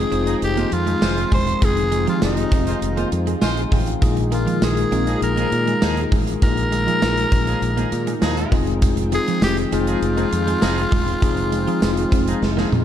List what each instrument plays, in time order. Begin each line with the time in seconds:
Already playing: analog synth pad D#3 F3 G#3 C4 G5, tine electric piano G#3 C4 D#4 F4 G#4, tenor saxophone G#4
0.12 fingered electric bass F1, tine electric piano G#3 C4 D#4 F4 C5, clean electric guitar C4, closed hi-hat, tambourine
0.27 horn section F3 D#4 G#4, closed hi-hat
0.42 fingered electric bass F1, tenor saxophone G4, closed hi-hat, tambourine
0.57 horn section G#3 F4 C5, clean electric guitar A#3, closed hi-hat
0.72 fingered electric bass F2, tenor saxophone F4, muted clean electric guitar stroke, closed hi-hat, tambourine
0.87 clean electric guitar G#3, closed hi-hat
1.02 fingered electric bass F1, horn section G#3 F4 C5, snare, tambourine
1.17 closed hi-hat
1.32 fingered electric bass E1, clean electric guitar G#3, analog synth pad F4, tenor saxophone C5, kick, open hi-hat, tambourine
1.47 closed hi-hat
1.61 fingered electric bass F1, tine electric piano G#3 C4 D#4 F4 G#4, tenor saxophone G#4, kick, closed hi-hat, tambourine
1.77 muted clean electric guitar stroke, closed hi-hat
1.92 clean electric guitar G#3, closed hi-hat, tambourine
2.07 clean electric guitar F3, tine electric piano G#3 C4 D#4 F4 G4, tenor saxophone F4, closed hi-hat
2.14 tine electric piano G#4
2.22 fingered electric bass F1, tenor saxophone D#4, snare, tambourine
2.37 closed hi-hat
2.52 fingered electric bass F1, clean electric guitar C4, kick, closed hi-hat, tambourine
2.67 horn section G#3 F4 C5, closed hi-hat
2.82 fingered electric bass F1, closed hi-hat
2.97 horn section G#3 F4 C5, clean electric guitar A#3, closed hi-hat
3.12 fingered electric bass F2, muted clean electric guitar stroke, closed hi-hat, tambourine
3.27 clean electric guitar G#3, closed hi-hat
3.42 fingered electric bass A#1, horn section G#3 F4 C5, tine electric piano D#5 G#5, snare, tambourine
3.57 closed hi-hat
3.72 fingered electric bass A1, clean electric guitar G#3, tine electric piano F5 G5, kick, open hi-hat, tambourine
3.87 tine electric piano F5, closed hi-hat
4.01 fingered electric bass A#1, tine electric piano A#2 G#3 A#3 D#4 F4 G#4, analog synth pad G#3 A#3, kick, closed hi-hat, tambourine
4.17 muted clean electric guitar stroke, closed hi-hat
4.31 tine electric piano G#3 A#3 D#4 F4 A#4, clean electric guitar G#3, tenor saxophone F4, closed hi-hat, tambourine
4.47 clean electric guitar F3, closed hi-hat
4.62 fingered electric bass A#1, tenor saxophone G#4, snare, tambourine
4.77 closed hi-hat
4.91 fingered electric bass A#1, tine electric piano G#3 A#3 D#4 F4 G#4, clean electric guitar C4, closed hi-hat, tambourine
5.07 horn section F3 D#4 G#4, closed hi-hat
5.22 fingered electric bass A#1, tenor saxophone A#4, closed hi-hat
5.37 horn section F3 D#4 G#4, clean electric guitar A#3, closed hi-hat
5.52 fingered electric bass A#2, muted clean electric guitar stroke, closed hi-hat, tambourine
5.67 clean electric guitar G#3, closed hi-hat
5.82 fingered electric bass D#2, horn section F3 D#4 G#4, snare, tambourine
5.97 closed hi-hat
6.12 fingered electric bass A1, clean electric guitar G#3, kick, open hi-hat, tambourine
6.27 closed hi-hat
6.42 fingered electric bass A#1, tine electric piano A#2 G#3 A#3 D#4 F4 G#4, tenor saxophone A#4, kick, closed hi-hat, tambourine
6.57 muted clean electric guitar stroke, closed hi-hat
6.72 clean electric guitar G#3, closed hi-hat, tambourine
6.87 clean electric guitar F3, tine electric piano G#3 A#3 D#4 F4 G#4, closed hi-hat
7.02 fingered electric bass A#1, snare, tambourine
7.17 closed hi-hat
7.32 fingered electric bass A#1, clean electric guitar C4, kick, closed hi-hat, tambourine
7.47 horn section F3 D#4 G#4, closed hi-hat
7.62 fingered electric bass A#1, closed hi-hat, tambourine
7.77 horn section F3 D#4 G#4, clean electric guitar A#3, closed hi-hat
7.92 fingered electric bass A#2, muted clean electric guitar stroke, closed hi-hat, tambourine
8.07 clean electric guitar G#3, closed hi-hat
8.22 fingered electric bass D#2, horn section F3 D#4 G#4, snare, tambourine
8.37 closed hi-hat
8.52 fingered electric bass F1, analog synth pad F3 G#3 C4 G5, tine electric piano G#3 C4 D#4 F4 G#4, clean electric guitar G#3, kick, open hi-hat, tambourine
8.67 closed hi-hat
8.82 kick, closed hi-hat, tambourine
8.97 muted clean electric guitar stroke, closed hi-hat
9.12 tine electric piano G#3 C4 D#4 F4 G#4, clean electric guitar G#3, tenor saxophone G#4, closed hi-hat, tambourine
9.27 clean electric guitar F3, closed hi-hat
9.42 fingered electric bass F1, tenor saxophone G4, snare, tambourine
9.57 closed hi-hat
9.72 fingered electric bass F1, tine electric piano G#3 C4 D#4 F4 G#4, clean electric guitar C4, tenor saxophone F4, closed hi-hat, tambourine
9.87 horn section F3 D#4 G#4, closed hi-hat
10.02 fingered electric bass F1, closed hi-hat
10.17 horn section F3 D#4 G#4, clean electric guitar A#3, closed hi-hat
10.32 fingered electric bass F2, muted clean electric guitar stroke, closed hi-hat, tambourine
10.47 clean electric guitar G#3, closed hi-hat
10.62 fingered electric bass F1, horn section F3 D#4 G#4, snare, tambourine
10.78 closed hi-hat
10.92 fingered electric bass E1, clean electric guitar G#3, kick, open hi-hat, tambourine
11.08 closed hi-hat
11.22 fingered electric bass F1, tine electric piano G#3 C4 D#4 F4 G#4, kick, closed hi-hat, tambourine
11.37 muted clean electric guitar stroke, closed hi-hat
11.52 clean electric guitar G#3, closed hi-hat, tambourine
11.67 clean electric guitar F3, tine electric piano G#3 C4 D#4 F4 G#4, closed hi-hat
11.82 fingered electric bass F1, snare, tambourine
11.97 closed hi-hat
12.12 fingered electric bass F1, clean electric guitar C4, kick, closed hi-hat, tambourine
12.27 horn section F3 D#4 G#4, closed hi-hat
12.42 fingered electric bass F1, snare
12.57 horn section F3 D#4 G#4, clean electric guitar A#3, snare
12.72 fingered electric bass F2, muted clean electric guitar stroke, high tom, tambourine